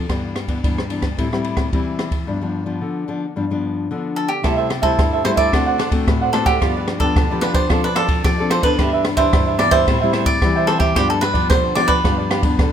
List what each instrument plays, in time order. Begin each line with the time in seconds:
0.09 nylon-string guitar G2 E3 B3 D4, kick, cross-stick, ride
0.36 cross-stick, ride
0.48 nylon-string guitar E3 B3 D4, kick, ride
0.63 nylon-string guitar G2 E3 B3 D4, kick, ride
0.78 cross-stick
0.90 nylon-string guitar E3 B3 D4, ride
1.02 kick, cross-stick, ride
1.18 nylon-string guitar A2 G3 C4 E4, kick, ride
1.32 nylon-string guitar G3 C4 E4, cross-stick
1.44 ride
1.57 kick, cross-stick, ride
1.73 nylon-string guitar E3 G3 C4 E4, kick, ride
1.99 cross-stick, ride
2.11 kick, ride
2.27 nylon-string guitar G2 F3 B3 D4
2.41 nylon-string guitar F3 B3 D4
2.66 nylon-string guitar F3 B3 D4
2.81 nylon-string guitar D3
3.08 nylon-string guitar F3 B3 D4
3.36 nylon-string guitar G2 F3 B3 D4
3.51 nylon-string guitar F3 B3 D4
3.91 nylon-string guitar D3 F3 B3 D4
4.16 cavaquinho A4
4.28 cavaquinho G4
4.43 nylon-string guitar C3 G3 A3 E4, cavaquinho E4 A4 C5 E5, kick, cross-stick, ride
4.57 cavaquinho A4 C5 E5
4.69 muted cavaquinho stroke, cross-stick, ride
4.82 nylon-string guitar G3 A3 E4, cavaquinho A4 C5 E5, kick, ride
4.99 nylon-string guitar G2, kick, cross-stick, ride
5.13 cavaquinho A4 C5 E5
5.24 nylon-string guitar G3 A3 E4, cavaquinho E4 A4 C5 E5, cross-stick, ride
5.36 cavaquinho A4 C5 D5 E5, kick, ride
5.52 nylon-string guitar D3 A3 C4 F#4, cavaquinho D4 C5 D5 F#5, kick, cross-stick, ride
5.66 cavaquinho C5 D5 F#5
5.78 cavaquinho D4 C5 D5 F#5, cross-stick, ride
5.91 nylon-string guitar A3 C4 F#4, muted cavaquinho stroke, kick, ride
6.07 nylon-string guitar A2, kick, cross-stick, ride
6.21 cavaquinho C5 D5 F#5
6.33 nylon-string guitar A3 C4 F#4, cavaquinho D4 A4 C5 D5 F#5, cross-stick, ride
6.46 cavaquinho G4 C5 D5 F#5, kick, ride
6.61 nylon-string guitar G2 F3 B3 D4, cavaquinho F4 G4 B4 D5, kick, cross-stick, ride
6.77 cavaquinho G4 B4 D5
6.88 muted cavaquinho stroke, cross-stick, ride
7.00 nylon-string guitar F3 B3 D4, cavaquinho G4 A4 B4 D5, kick, ride
7.16 nylon-string guitar D3, kick, cross-stick, ride
7.31 nylon-string guitar F3 B3 D4, cavaquinho G4 B4 D5
7.41 cavaquinho F4 G4 B4 D5, cross-stick, ride
7.54 cavaquinho G4 B4 C5 D5, kick, ride
7.69 nylon-string guitar F3 C4 D4 A4, cavaquinho F4 A4 C5 D5, kick, cross-stick, ride
7.84 cavaquinho A4 B4 C5 D5
7.95 nylon-string guitar C4 D4 A4, cavaquinho F4 A4 C5 D5, cross-stick, ride
8.08 muted cavaquinho stroke, kick, ride
8.24 nylon-string guitar F3, cavaquinho D5, kick, cross-stick, ride
8.38 nylon-string guitar C4 D4 A4, cavaquinho A4 C5 D5
8.50 cavaquinho F4 A4 C5 D5, cross-stick, ride
8.62 nylon-string guitar E3 B3 D4, cavaquinho A4 B4 C5 D5, kick, ride
8.78 nylon-string guitar G2, cavaquinho D4 G4 B4 E5, kick, cross-stick, ride
8.93 cavaquinho G4 B4 E5
9.05 muted cavaquinho stroke, cross-stick, ride
9.17 nylon-string guitar E3 D4, cavaquinho G4 B4 C5 E5, kick, ride
9.33 nylon-string guitar G2, kick, cross-stick, ride
9.46 cavaquinho G4 B4 E5
9.58 nylon-string guitar E3 B3 D4, cavaquinho D4 G4 B4 D5 E5, cross-stick, ride
9.71 cavaquinho G4 B4 C5 E5, kick, ride
9.87 nylon-string guitar A2 G3 C4 E4, cavaquinho A4 C5 E5 G5, kick, cross-stick, ride
10.01 nylon-string guitar G3 C4 E4, cavaquinho C5 E5 G5
10.12 cavaquinho A4 C5 E5 G5, cross-stick, ride
10.25 cavaquinho D5, muted cavaquinho stroke, kick, ride
10.42 nylon-string guitar E3 G3 C4 E4, kick, cross-stick, ride
10.55 cavaquinho C5 E5 G5
10.67 cavaquinho A4 C5 E5 G5, cross-stick, ride
10.79 cavaquinho G4 C5 E5 G5, kick, ride
10.95 nylon-string guitar G2 F3 B3 D4, cavaquinho F4 G4 B4 D5, kick, cross-stick, ride
11.09 cavaquinho G4 A4 B4 D5
11.21 cavaquinho B4, muted cavaquinho stroke, cross-stick, ride
11.33 nylon-string guitar F3 B3 D4, cavaquinho G4 B4 D5, kick, ride
11.50 nylon-string guitar D3, cavaquinho C5, kick, cross-stick, ride
11.63 cavaquinho G4 B4 D5
11.75 nylon-string guitar F3 B3 D4, cavaquinho F4 G4 B4 D5, cross-stick, ride
11.88 cavaquinho G4 B4 D5, kick, ride
12.04 nylon-string guitar G2 F3 B3 D4, cavaquinho F4 G4 B4 D5, kick, cross-stick, ride
12.18 cavaquinho G4 B4 D5
12.30 cavaquinho F4 G4 B4 D5, cross-stick, ride
12.43 nylon-string guitar F3 B3 D4, muted cavaquinho stroke, kick, ride
12.59 nylon-string guitar D3, kick, cross-stick, ride